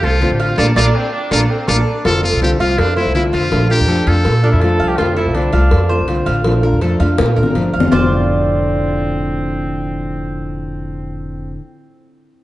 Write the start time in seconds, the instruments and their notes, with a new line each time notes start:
0.03 upright bass C2, nylon-string guitar A3 C4 F4, muted trumpet F4, cuban tres A4
0.21 nylon-string guitar D3 A3 C4 F4, cowbell
0.30 upright bass A1, muted trumpet G4
0.40 muted trumpet F4, cuban tres F5, cowbell
0.58 upright bass A#1, nylon-string guitar A3 A#3 D4, muted trumpet F4, cuban tres A4 A#4 D5, cowbell
0.76 upright bass A#1, nylon-string guitar A3 A#3 D4, trumpet E4, muted trumpet F4, cuban tres A4 A#4 D5, cowbell
0.82 trumpet D4
0.95 trumpet C4
1.12 trumpet D4
1.31 upright bass A#1, nylon-string guitar A3 A#3 D4, trumpet A#3, muted trumpet F4, cuban tres A4 A#4 D5, cowbell
1.50 trumpet C4
1.68 upright bass A#1, nylon-string guitar A3 A#3 D4, trumpet D4, muted trumpet F4, cuban tres A4 A#4 D5, cowbell
2.05 upright bass F1, nylon-string guitar D3 A3 C4 F4, cuban tres F4, muted trumpet A4, cowbell
2.23 nylon-string guitar A3 C4 F4, muted trumpet F4, cuban tres A4
2.32 upright bass C2
2.41 nylon-string guitar D3 A3 C4 F4, muted trumpet G4, cowbell
2.60 upright bass C2, nylon-string guitar A3 C4 F4, muted trumpet F4, cuban tres F5, cowbell
2.78 upright bass F2, muted trumpet D4, muted nylon-string guitar stroke, cowbell
2.96 nylon-string guitar A3 C4 F4, muted trumpet E4, cuban tres C5
3.06 upright bass C2
3.14 nylon-string guitar D3 A3 C4 F4, muted trumpet E4, cowbell
3.33 upright bass F1, muted trumpet F4, cuban tres F5, cowbell
3.51 upright bass A#1, nylon-string guitar F3 A3 D4 F4, cowbell
3.69 nylon-string guitar A3 D4 F4, muted trumpet G4, cuban tres A#4
3.80 upright bass F2
3.88 nylon-string guitar F3 A3 D4 F4, cuban tres A4, cowbell
4.06 upright bass F2, nylon-string guitar A3 D4 F4, muted trumpet A4, cuban tres F5, cowbell
4.25 upright bass A#2, muted nylon-string guitar stroke, cowbell
4.43 nylon-string guitar A3 D4 F4, trumpet D4, cuban tres A#4
4.52 upright bass F2, trumpet E4
4.61 nylon-string guitar F3 A3 D4 F4, trumpet A4, cowbell
4.80 upright bass C2, cuban tres F5
4.88 trumpet G4
4.97 upright bass F1, nylon-string guitar D3 A3 C4 F4, trumpet F4, cuban tres F4, cowbell
5.17 nylon-string guitar A3 C4 F4, trumpet E4, cuban tres A4
5.26 upright bass C2
5.35 nylon-string guitar D3 A3 C4 F4, trumpet D4, cowbell
5.53 upright bass C2, nylon-string guitar A3 C4 F4, cuban tres F5, cowbell
5.71 upright bass F2, muted nylon-string guitar stroke, cowbell
5.89 nylon-string guitar A3 C4 F4, cuban tres C5
5.99 upright bass C2
6.08 nylon-string guitar D3 A3 C4 F4, cowbell
6.26 upright bass A1, cuban tres F5, cowbell
6.44 upright bass A#1, nylon-string guitar F3 A3 D4 F4, cowbell
6.63 nylon-string guitar A3 D4 F4, cuban tres A#4
6.73 upright bass F2
6.81 nylon-string guitar F3 A3 D4 F4, cuban tres A4, cowbell
7.00 upright bass F2, nylon-string guitar A3 D4 F4, cuban tres F5, cowbell
7.18 upright bass A#2, muted nylon-string guitar stroke, cowbell, high bongo
7.36 upright bass A1, nylon-string guitar A3 D4 F4, cuban tres A#4
7.43 low bongo
7.55 upright bass G1, nylon-string guitar F3 A3 D4 F4, cowbell
7.74 upright bass F1, cuban tres F5
7.80 low bongo
7.92 upright bass F1, nylon-string guitar F2 A2 D3 A3 C4 F4, trumpet C4, cuban tres F4 C5 D5, low bongo